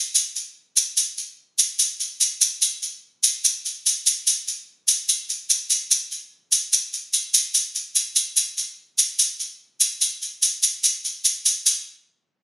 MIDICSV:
0, 0, Header, 1, 2, 480
1, 0, Start_track
1, 0, Tempo, 410987
1, 176, Time_signature, 4, 2, 24, 8
1, 14520, End_track
2, 0, Start_track
2, 0, Title_t, "Drums"
2, 175, Note_on_c, 9, 82, 64
2, 292, Note_off_c, 9, 82, 0
2, 418, Note_on_c, 9, 82, 23
2, 535, Note_off_c, 9, 82, 0
2, 897, Note_on_c, 9, 82, 61
2, 1014, Note_off_c, 9, 82, 0
2, 1133, Note_on_c, 9, 82, 65
2, 1250, Note_off_c, 9, 82, 0
2, 1376, Note_on_c, 9, 82, 25
2, 1493, Note_off_c, 9, 82, 0
2, 1854, Note_on_c, 9, 82, 61
2, 1971, Note_off_c, 9, 82, 0
2, 2091, Note_on_c, 9, 82, 60
2, 2208, Note_off_c, 9, 82, 0
2, 2337, Note_on_c, 9, 82, 26
2, 2454, Note_off_c, 9, 82, 0
2, 2577, Note_on_c, 9, 82, 55
2, 2694, Note_off_c, 9, 82, 0
2, 2818, Note_on_c, 9, 82, 64
2, 2935, Note_off_c, 9, 82, 0
2, 3058, Note_on_c, 9, 82, 72
2, 3175, Note_off_c, 9, 82, 0
2, 3300, Note_on_c, 9, 82, 27
2, 3417, Note_off_c, 9, 82, 0
2, 3780, Note_on_c, 9, 82, 64
2, 3897, Note_off_c, 9, 82, 0
2, 4025, Note_on_c, 9, 82, 67
2, 4142, Note_off_c, 9, 82, 0
2, 4266, Note_on_c, 9, 82, 27
2, 4383, Note_off_c, 9, 82, 0
2, 4511, Note_on_c, 9, 82, 54
2, 4628, Note_off_c, 9, 82, 0
2, 4747, Note_on_c, 9, 82, 63
2, 4864, Note_off_c, 9, 82, 0
2, 4987, Note_on_c, 9, 82, 66
2, 5104, Note_off_c, 9, 82, 0
2, 5229, Note_on_c, 9, 82, 25
2, 5346, Note_off_c, 9, 82, 0
2, 5700, Note_on_c, 9, 82, 63
2, 5817, Note_off_c, 9, 82, 0
2, 5943, Note_on_c, 9, 82, 69
2, 6060, Note_off_c, 9, 82, 0
2, 6183, Note_on_c, 9, 82, 25
2, 6300, Note_off_c, 9, 82, 0
2, 6422, Note_on_c, 9, 82, 52
2, 6539, Note_off_c, 9, 82, 0
2, 6658, Note_on_c, 9, 82, 58
2, 6775, Note_off_c, 9, 82, 0
2, 6904, Note_on_c, 9, 82, 64
2, 7020, Note_off_c, 9, 82, 0
2, 7142, Note_on_c, 9, 82, 25
2, 7258, Note_off_c, 9, 82, 0
2, 7616, Note_on_c, 9, 82, 64
2, 7733, Note_off_c, 9, 82, 0
2, 7859, Note_on_c, 9, 82, 65
2, 7976, Note_off_c, 9, 82, 0
2, 8097, Note_on_c, 9, 82, 24
2, 8214, Note_off_c, 9, 82, 0
2, 8332, Note_on_c, 9, 82, 57
2, 8449, Note_off_c, 9, 82, 0
2, 8574, Note_on_c, 9, 82, 67
2, 8691, Note_off_c, 9, 82, 0
2, 8811, Note_on_c, 9, 82, 66
2, 8927, Note_off_c, 9, 82, 0
2, 9054, Note_on_c, 9, 82, 27
2, 9170, Note_off_c, 9, 82, 0
2, 9291, Note_on_c, 9, 82, 55
2, 9408, Note_off_c, 9, 82, 0
2, 9529, Note_on_c, 9, 82, 66
2, 9646, Note_off_c, 9, 82, 0
2, 9772, Note_on_c, 9, 82, 67
2, 9889, Note_off_c, 9, 82, 0
2, 10016, Note_on_c, 9, 82, 24
2, 10132, Note_off_c, 9, 82, 0
2, 10493, Note_on_c, 9, 82, 58
2, 10610, Note_off_c, 9, 82, 0
2, 10733, Note_on_c, 9, 82, 71
2, 10850, Note_off_c, 9, 82, 0
2, 10977, Note_on_c, 9, 82, 25
2, 11094, Note_off_c, 9, 82, 0
2, 11453, Note_on_c, 9, 82, 66
2, 11570, Note_off_c, 9, 82, 0
2, 11694, Note_on_c, 9, 82, 63
2, 11811, Note_off_c, 9, 82, 0
2, 11937, Note_on_c, 9, 82, 26
2, 12054, Note_off_c, 9, 82, 0
2, 12175, Note_on_c, 9, 82, 58
2, 12292, Note_off_c, 9, 82, 0
2, 12414, Note_on_c, 9, 82, 62
2, 12531, Note_off_c, 9, 82, 0
2, 12657, Note_on_c, 9, 82, 62
2, 12774, Note_off_c, 9, 82, 0
2, 12902, Note_on_c, 9, 82, 26
2, 13019, Note_off_c, 9, 82, 0
2, 13136, Note_on_c, 9, 82, 56
2, 13252, Note_off_c, 9, 82, 0
2, 13379, Note_on_c, 9, 82, 60
2, 13496, Note_off_c, 9, 82, 0
2, 13624, Note_on_c, 9, 82, 98
2, 13741, Note_off_c, 9, 82, 0
2, 14520, End_track
0, 0, End_of_file